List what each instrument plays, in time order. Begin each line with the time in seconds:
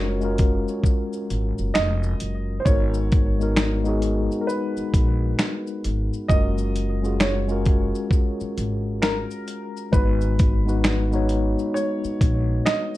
Already playing: upright bass F#1, tine electric piano G#3 C#4 F4 F#4 A#4, upright piano C#5
0.20 tine electric piano G#3 C#4 F4 F#4, shaker
0.24 tine electric piano A#4
0.38 kick, closed hi-hat, shaker
0.68 shaker
0.84 kick, shaker
1.13 shaker
1.30 upright bass G#1, closed hi-hat, shaker
1.58 upright bass F#1, shaker
1.74 upright bass F1, upright piano D#5, finger snap, snare, shaker
2.03 shaker
2.20 upright bass F#1, closed hi-hat, shaker
2.60 upright piano C5
2.65 upright bass G#1, tine electric piano G#3 B3 D#4 F#4 A#4, upright piano C#5, kick, shaker
2.94 shaker
3.12 kick, closed hi-hat, shaker
3.38 tine electric piano G#3 B3 D#4 F#4, shaker
3.43 tine electric piano A#4
3.56 finger snap, snare, shaker
3.84 tine electric piano G#3 B3 D#4 F#4 G#4, shaker
4.02 closed hi-hat, shaker
4.32 shaker
4.41 upright piano A#4
4.47 upright piano B4, shaker
4.77 muted upright bass stroke, shaker
4.94 upright bass A#1, kick, closed hi-hat, shaker
5.39 finger snap, snare, shaker
5.67 shaker
5.84 upright bass G#1, closed hi-hat, shaker
6.13 shaker
6.28 upright bass F#1, tine electric piano G#3 C#4 F4 F#4, upright piano D#5, kick, shaker
6.33 tine electric piano A#4
6.58 shaker
6.76 closed hi-hat, shaker
7.02 tine electric piano G#3 C#4 F4 F#4 G#4, shaker
7.20 upright piano C#5, finger snap, snare, shaker
7.47 tine electric piano G#3 C#4 F4 F#4, shaker
7.52 tine electric piano A#4
7.65 kick, closed hi-hat, shaker
7.95 shaker
8.11 kick, shaker
8.40 muted upright bass stroke, shaker
8.58 upright bass G#1, closed hi-hat, shaker
9.02 upright piano A#4, finger snap, snare, shaker
9.31 shaker
9.48 closed hi-hat, shaker
9.77 shaker
9.91 upright bass G#1, tine electric piano G#3 B3 D#4 F#4, upright piano B4, kick, shaker
9.96 tine electric piano B4
10.21 shaker
10.39 kick, closed hi-hat, shaker
10.65 tine electric piano G#3 B3 D#4 F#4, shaker
10.69 tine electric piano B4
10.84 finger snap, snare, shaker
11.11 tine electric piano G#3 B3 D#4 F#4, shaker
11.15 tine electric piano C#5
11.29 closed hi-hat, shaker
11.59 shaker
11.74 upright piano C#5, shaker
12.04 muted upright bass stroke, shaker
12.21 upright bass A#1, kick, closed hi-hat, shaker
12.66 upright piano D#5, finger snap, snare, shaker